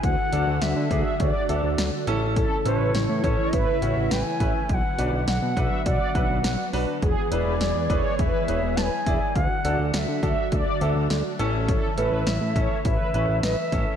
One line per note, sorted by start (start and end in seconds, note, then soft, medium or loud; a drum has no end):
0.03 0.16 D2 loud
0.03 2.05 D3 medium
0.03 2.05 F#3 medium
0.03 4.66 A3 medium
0.03 2.05 F#4 medium
0.03 0.63 F#5 loud
0.03 kick loud
0.03 closed hi-hat medium
0.33 0.45 D2 loud
0.33 0.52 D4 medium
0.33 0.52 F#4 medium
0.33 0.52 A4 medium
0.33 0.45 D5 medium
0.33 closed hi-hat medium
0.47 0.60 D2 loud
0.62 0.74 D2 loud
0.62 1.22 E5 loud
0.62 snare loud
0.62 closed hi-hat medium
0.76 0.89 D3 loud
0.91 1.04 D2 loud
0.91 1.11 D4 medium
0.91 1.11 F#4 medium
0.91 1.11 G#4 medium
0.91 1.15 E5 medium
0.91 kick medium
0.91 closed hi-hat medium
1.20 1.33 D2 loud
1.20 1.45 D5 medium
1.20 2.07 D5 medium
1.20 kick loud
1.20 closed hi-hat medium
1.49 1.62 D2 loud
1.49 1.69 D4 medium
1.49 1.69 F#4 medium
1.49 1.69 A4 medium
1.49 1.61 E5 medium
1.49 closed hi-hat medium
1.64 1.76 D2 loud
1.78 1.91 D2 loud
1.78 snare loud
1.78 closed hi-hat medium
2.07 2.46 A1 loud
2.07 4.67 C#3 medium
2.07 4.67 E3 medium
2.07 2.54 C#4 medium
2.07 4.67 E4 medium
2.07 2.54 E4 medium
2.07 2.54 A4 loud
2.07 closed hi-hat medium
2.36 2.61 A4 loud
2.36 kick loud
2.36 closed hi-hat medium
2.66 2.78 A1 loud
2.66 2.85 C#4 medium
2.66 2.85 E4 medium
2.66 2.85 A4 medium
2.66 2.90 B4 medium
2.66 3.55 C#5 loud
2.66 closed hi-hat medium
2.80 2.93 A1 loud
2.95 3.08 A1 loud
2.95 snare loud
2.95 closed hi-hat medium
3.09 3.22 A2 medium
3.24 3.37 A1 loud
3.24 3.44 C#4 medium
3.24 3.44 E4 medium
3.24 3.44 A4 medium
3.24 3.48 C#5 medium
3.24 kick medium
3.24 closed hi-hat medium
3.53 3.66 A1 loud
3.53 3.78 B4 medium
3.53 4.13 E5 loud
3.53 kick loud
3.53 closed hi-hat medium
3.82 3.95 A1 loud
3.82 4.02 C#4 medium
3.82 4.02 E4 medium
3.82 4.02 F#4 medium
3.82 3.94 C#5 medium
3.82 closed hi-hat medium
3.97 4.09 A1 loud
4.11 4.24 A1 loud
4.11 4.23 B4 medium
4.11 4.69 G#5 loud
4.11 snare loud
4.11 closed hi-hat medium
4.40 4.53 A1 loud
4.40 4.60 C#4 medium
4.40 4.60 E4 medium
4.40 4.60 B4 medium
4.40 4.53 E5 medium
4.40 kick medium
4.40 closed hi-hat medium
4.69 4.82 B1 loud
4.69 7.00 D3 medium
4.69 7.00 F#3 medium
4.69 9.31 B3 medium
4.69 7.00 F#4 medium
4.69 4.75 G#5 loud
4.69 kick loud
4.69 closed hi-hat medium
4.74 5.27 F#5 loud
4.99 5.11 B1 loud
4.99 5.18 D4 medium
4.99 5.18 F#4 medium
4.99 5.18 B4 medium
4.99 5.11 D5 medium
4.99 closed hi-hat medium
5.13 5.26 B1 loud
5.28 5.41 B1 loud
5.28 5.82 F#5 loud
5.28 snare loud
5.28 closed hi-hat medium
5.42 5.55 B2 loud
5.57 5.70 B1 loud
5.57 5.77 D4 medium
5.57 5.77 F#4 medium
5.57 5.77 B4 medium
5.57 5.81 E5 medium
5.57 kick medium
5.57 closed hi-hat medium
5.86 5.99 B1 loud
5.86 6.11 D5 medium
5.86 6.69 F#5 medium
5.86 kick loud
5.86 closed hi-hat medium
6.15 6.28 B1 medium
6.15 6.35 D4 medium
6.15 6.35 F#4 medium
6.15 6.35 B4 medium
6.15 6.27 E5 medium
6.15 kick medium
6.15 closed hi-hat medium
6.30 6.43 B1 medium
6.44 6.57 B1 loud
6.44 snare loud
6.44 closed hi-hat medium
6.73 6.86 B1 medium
6.73 6.93 D4 medium
6.73 6.93 F#4 medium
6.73 6.93 B4 loud
6.73 open hi-hat medium
7.02 7.15 E1 loud
7.02 9.33 E3 medium
7.02 9.33 G#3 medium
7.02 9.33 G#4 medium
7.02 7.27 G#4 loud
7.02 kick loud
7.02 closed hi-hat medium
7.32 7.44 E1 loud
7.32 7.51 E4 medium
7.32 7.51 G#4 medium
7.32 7.51 B4 medium
7.32 7.56 B4 medium
7.32 8.15 D5 medium
7.32 closed hi-hat medium
7.46 7.59 E1 loud
7.61 7.74 E1 loud
7.61 snare loud
7.61 closed hi-hat medium
7.75 7.88 E2 loud
7.90 8.03 E1 loud
7.90 8.10 E4 medium
7.90 8.10 G#4 medium
7.90 8.10 B4 medium
7.90 8.14 C#5 medium
7.90 kick medium
7.90 closed hi-hat medium
8.19 8.32 E1 loud
8.19 8.44 B4 medium
8.19 8.79 E5 loud
8.19 kick loud
8.19 closed hi-hat medium
8.48 8.61 E1 loud
8.48 8.68 E4 medium
8.48 8.68 G#4 medium
8.48 8.68 B4 medium
8.48 8.61 C#5 medium
8.48 closed hi-hat medium
8.63 8.76 E1 loud
8.77 8.90 E1 loud
8.77 8.90 B4 medium
8.77 8.83 A5 loud
8.77 snare loud
8.77 closed hi-hat medium
8.82 9.37 G#5 loud
9.06 9.19 E1 loud
9.06 9.26 E4 medium
9.06 9.26 G#4 medium
9.06 9.26 D5 medium
9.06 9.19 E5 medium
9.06 kick medium
9.06 closed hi-hat medium
9.36 9.48 D2 loud
9.36 11.37 D3 medium
9.36 11.37 F#3 medium
9.36 13.96 A3 medium
9.36 11.37 F#4 medium
9.36 9.94 F#5 loud
9.36 kick loud
9.36 closed hi-hat medium
9.65 9.77 D2 loud
9.65 9.84 D4 medium
9.65 9.84 F#4 medium
9.65 9.84 A4 medium
9.65 9.77 D5 medium
9.65 closed hi-hat medium
9.79 9.92 D2 loud
9.94 10.07 D2 loud
9.94 9.99 F#5 medium
9.94 snare loud
9.94 closed hi-hat medium
9.98 10.51 E5 loud
10.08 10.21 D3 loud
10.23 10.36 D2 loud
10.23 10.43 D4 medium
10.23 10.43 F#4 medium
10.23 10.43 A4 medium
10.23 10.48 E5 medium
10.23 kick medium
10.23 closed hi-hat medium
10.52 10.65 D2 loud
10.52 10.77 D5 medium
10.52 10.57 E5 medium
10.52 kick loud
10.52 closed hi-hat medium
10.56 11.35 D5 medium
10.81 10.94 D2 loud
10.81 11.01 D4 medium
10.81 11.01 F#4 medium
10.81 11.01 A4 medium
10.81 10.94 E5 medium
10.81 closed hi-hat medium
10.96 11.09 D2 loud
11.10 11.23 D2 loud
11.10 snare loud
11.10 closed hi-hat medium
11.39 11.78 A1 loud
11.39 13.96 C#3 medium
11.39 13.96 E3 medium
11.39 11.86 C#4 medium
11.39 11.86 E4 medium
11.39 13.96 E4 medium
11.39 11.86 A4 loud
11.39 closed hi-hat medium
11.69 11.93 A4 loud
11.69 kick loud
11.69 closed hi-hat medium
11.98 12.10 A1 loud
11.98 12.17 C#4 medium
11.98 12.17 E4 medium
11.98 12.17 A4 medium
11.98 12.22 B4 medium
11.98 12.81 E5 loud
11.98 closed hi-hat medium
12.12 12.25 A1 loud
12.27 12.40 A1 loud
12.27 snare loud
12.27 closed hi-hat medium
12.41 12.54 A2 loud
12.56 12.69 A1 loud
12.56 12.76 C#4 medium
12.56 12.76 E4 medium
12.56 12.76 A4 medium
12.56 12.81 C#5 medium
12.56 kick medium
12.56 closed hi-hat medium
12.85 12.98 A1 loud
12.85 13.10 B4 medium
12.85 13.39 E5 loud
12.85 kick loud
12.85 closed hi-hat medium
13.14 13.27 A1 loud
13.14 13.34 C#4 medium
13.14 13.34 E4 medium
13.14 13.34 B4 medium
13.14 13.26 C#5 medium
13.14 closed hi-hat medium
13.29 13.41 A1 loud
13.43 13.56 A1 loud
13.43 13.56 B4 medium
13.43 13.96 E5 loud
13.43 snare loud
13.43 closed hi-hat medium
13.72 13.85 A1 loud
13.72 13.92 C#4 medium
13.72 13.92 E4 medium
13.72 13.92 A4 medium
13.72 13.85 E5 medium
13.72 kick medium
13.72 closed hi-hat medium